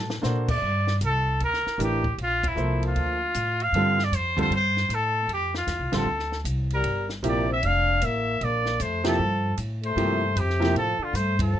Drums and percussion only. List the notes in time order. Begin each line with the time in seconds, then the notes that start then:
0.10 snare
0.23 snare, hi-hat pedal
0.48 kick, crash
0.87 snare
1.01 hi-hat pedal, ride
1.40 ride
1.54 snare
1.67 snare
1.80 hi-hat pedal, ride
2.04 kick
2.18 ride
2.43 kick, ride
2.57 hi-hat pedal
2.83 ride
2.96 ride
3.34 hi-hat pedal, ride
3.60 ride
3.74 ride
3.99 snare
4.13 hi-hat pedal, ride
4.38 kick, ride
4.52 ride
4.77 snare
4.90 hi-hat pedal, ride
5.29 ride
5.54 snare
5.67 snare, hi-hat pedal, ride
5.92 snare, ride
6.19 snare
6.32 snare
6.45 hi-hat pedal, ride
6.70 ride
6.84 ride
7.09 snare
7.24 hi-hat pedal, ride
7.63 ride
8.02 hi-hat pedal, ride
8.41 ride
8.66 snare
8.80 hi-hat pedal, ride
9.04 snare, ride
9.57 hi-hat pedal, ride
9.83 ride
9.98 ride
10.37 hi-hat pedal, ride
10.50 snare
10.62 snare, ride
10.76 ride
11.15 hi-hat pedal, ride
11.39 kick, ride